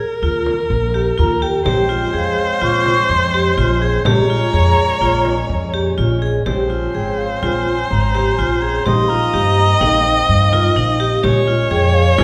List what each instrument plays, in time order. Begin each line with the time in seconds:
Already playing: viola A#4
0.22 upright bass D#2, vibraphone F4
0.46 frame drum
0.70 upright bass A#1, frame drum
0.94 vibraphone G4
1.18 upright bass D#2, vibraphone F4, flute A#5
1.42 vibraphone G4, flute G5
1.65 upright bass A#1, harmonium G#3 C4 C#4, vibraphone G4, viola C5, frame drum
1.89 vibraphone F4, frame drum
2.14 upright bass F2, vibraphone G#4, flute F5, frame drum
2.61 upright bass A#1, vibraphone F4, flute C#6
2.86 frame drum
3.10 upright bass F2, flute C6, frame drum
3.34 vibraphone G4
3.57 upright bass A#1, vibraphone F4
3.82 vibraphone G#4
4.05 upright bass A#1, harmonium A#2 G#3, vibraphone G4, viola C#5, flute A#5, frame drum
4.30 vibraphone F4
4.54 upright bass F2, vibraphone G#4, frame drum
5.01 upright bass A#1, vibraphone F4, frame drum
5.25 frame drum
5.49 upright bass F2, frame drum
5.73 vibraphone G4, frame drum
5.98 upright bass A#1, vibraphone F4
6.22 vibraphone G#4, frame drum
6.46 upright bass A#1, harmonium F3 C4 C#4, vibraphone G4, viola C5, frame drum
6.70 vibraphone F4, frame drum
6.94 upright bass G#1, vibraphone G#4, flute G5
7.18 flute F5
7.42 upright bass A#1, vibraphone F4, flute G#5, frame drum
7.90 upright bass G#1, flute A#5
8.15 vibraphone G4, frame drum
8.37 upright bass A#1, vibraphone F4, flute G#5
8.60 vibraphone G#4, flute A#5
8.85 upright bass A#1, harmonium A#3 D#4, vibraphone G4, viola D#5, flute C6, frame drum
9.08 vibraphone F4, flute A#5, frame drum
9.34 upright bass G2, vibraphone G4
9.79 upright bass A#1, vibraphone D#4, flute G5, frame drum
10.27 upright bass G2, flute D#5
10.52 vibraphone F4, frame drum
10.76 upright bass A#1, vibraphone D#4
11.00 vibraphone G4
11.23 upright bass A#1, harmonium A#2 G#3 C#4, vibraphone G4, viola C#5, frame drum
11.47 vibraphone F4, frame drum
11.71 upright bass F2, vibraphone G#4, flute G5
11.94 flute F5
12.18 upright bass A#1, vibraphone F4, flute G#5, frame drum